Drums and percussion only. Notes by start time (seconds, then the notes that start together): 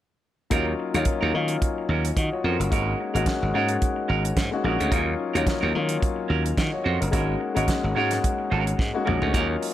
0.51 kick, closed hi-hat
0.94 closed hi-hat
1.05 kick, closed hi-hat
1.48 closed hi-hat
1.62 kick, closed hi-hat
2.05 closed hi-hat
2.17 kick, closed hi-hat
2.61 closed hi-hat
2.72 kick, closed hi-hat
3.16 closed hi-hat
3.26 kick, snare, closed hi-hat
3.69 closed hi-hat
3.82 kick, closed hi-hat
4.25 closed hi-hat
4.37 kick, snare, closed hi-hat
4.81 closed hi-hat
4.92 kick, closed hi-hat
5.36 closed hi-hat
5.47 kick, snare, closed hi-hat
5.89 closed hi-hat
6.02 kick, closed hi-hat
6.46 closed hi-hat
6.57 kick, snare, closed hi-hat
7.02 closed hi-hat
7.13 kick, closed hi-hat
7.57 closed hi-hat
7.68 kick, snare, closed hi-hat
8.11 snare, closed hi-hat
8.24 kick, closed hi-hat
8.67 closed hi-hat
8.79 kick, snare
9.07 mid tom
9.22 floor tom
9.34 kick, closed hi-hat
9.63 open hi-hat